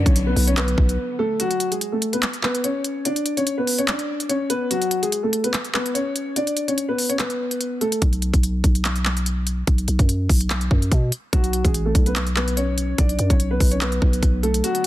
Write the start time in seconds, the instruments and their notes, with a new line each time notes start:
Already playing: string section D3 F#3 B3
0.06 808-style bass B1, grand piano C#4 C#5, kick, closed hi-hat
0.16 closed hi-hat
0.26 grand piano B3 B4
0.36 808-style bass B1, open hi-hat
0.47 grand piano C#4 C#5, closed hi-hat
0.57 grand piano B3 B4, clap, closed hi-hat
0.68 closed hi-hat
0.78 808-style bass B1, kick
0.89 closed hi-hat
1.19 grand piano A3 A4
1.40 grand piano F#3 F#4, closed hi-hat
1.51 closed hi-hat
1.60 closed hi-hat
1.71 grand piano G#3 G#4, closed hi-hat
1.81 closed hi-hat
1.92 grand piano A3 A4
2.02 closed hi-hat
2.13 grand piano B3 B4, closed hi-hat
2.23 clap, closed hi-hat
2.33 closed hi-hat
2.43 grand piano B3 B4, clap
2.55 closed hi-hat
2.64 grand piano C#4 C#5, closed hi-hat
2.84 closed hi-hat
3.05 grand piano D4 D5, closed hi-hat
3.16 closed hi-hat
3.26 closed hi-hat
3.37 grand piano C#4 C#5, closed hi-hat
3.47 closed hi-hat
3.58 grand piano B3 B4
3.67 open hi-hat
3.78 grand piano C#4 C#5, closed hi-hat
3.88 grand piano D4, clap, closed hi-hat
3.99 closed hi-hat
4.20 closed hi-hat
4.29 grand piano C#4 C#5, closed hi-hat
4.50 grand piano B3 B4, closed hi-hat
4.71 grand piano F#3 F#4, closed hi-hat
4.82 closed hi-hat
4.91 closed hi-hat
5.02 grand piano G#3 G#4, closed hi-hat
5.12 closed hi-hat
5.23 grand piano A3 A4
5.33 closed hi-hat
5.44 grand piano B3 B4, closed hi-hat
5.54 clap, closed hi-hat
5.64 closed hi-hat
5.74 grand piano B3 B4, clap
5.86 closed hi-hat
5.94 grand piano C#4 C#5, closed hi-hat
6.16 closed hi-hat
6.36 grand piano D4 D5, closed hi-hat
6.47 closed hi-hat
6.57 closed hi-hat
6.68 grand piano C#4 C#5, closed hi-hat
6.78 closed hi-hat
6.88 grand piano B3 B4
6.98 open hi-hat
7.09 grand piano C#4 C#5, closed hi-hat
7.19 grand piano B3 B4, clap, closed hi-hat
7.30 closed hi-hat
7.51 closed hi-hat
7.61 closed hi-hat
7.81 grand piano A3 A4, closed hi-hat
7.92 closed hi-hat
8.02 808-style bass B1, kick, closed hi-hat
8.13 closed hi-hat
8.22 closed hi-hat
8.34 808-style bass B1, kick, closed hi-hat
8.43 closed hi-hat
8.64 808-style bass B1, kick, closed hi-hat
8.75 closed hi-hat
8.85 clap, closed hi-hat
8.96 closed hi-hat
9.05 clap
9.17 closed hi-hat
9.26 closed hi-hat
9.47 closed hi-hat
9.67 808-style bass B1, kick, closed hi-hat
9.78 closed hi-hat
9.88 808-style bass B1, closed hi-hat
9.99 808-style bass F#2, kick, closed hi-hat
10.09 closed hi-hat
10.29 808-style bass B1, kick, open hi-hat
10.41 closed hi-hat
10.50 clap, closed hi-hat
10.61 closed hi-hat
10.71 808-style bass F#2, kick
10.82 closed hi-hat
10.92 808-style bass B2, kick, closed hi-hat
11.12 closed hi-hat
11.33 808-style bass B1, grand piano F#3 F#4, kick, closed hi-hat
11.44 closed hi-hat
11.53 closed hi-hat
11.65 808-style bass A1, grand piano G#3 G#4, kick, closed hi-hat
11.74 closed hi-hat
11.85 grand piano A3 A4
11.95 808-style bass B1, kick, closed hi-hat
12.06 grand piano B3 B4, closed hi-hat
12.16 clap, closed hi-hat
12.27 closed hi-hat
12.36 grand piano B3 B4, clap
12.48 closed hi-hat
12.57 grand piano C#4 C#5, closed hi-hat
12.78 closed hi-hat
12.98 808-style bass B1, grand piano D4 D5, kick, closed hi-hat
13.09 closed hi-hat
13.19 808-style bass F#2, closed hi-hat
13.30 808-style bass B1, grand piano C#4 C#5, kick, closed hi-hat
13.40 closed hi-hat
13.51 grand piano B3 B4
13.60 808-style bass B1, kick, open hi-hat
13.71 grand piano C#4 C#5, closed hi-hat
13.81 grand piano B3 B4, clap, closed hi-hat
13.92 closed hi-hat
14.02 808-style bass B1, kick
14.13 closed hi-hat
14.23 808-style bass B1, kick, closed hi-hat
14.43 grand piano A3 A4, closed hi-hat
14.54 closed hi-hat
14.64 string section D3 F#3 B3, grand piano F#3 F#4, closed hi-hat
14.75 closed hi-hat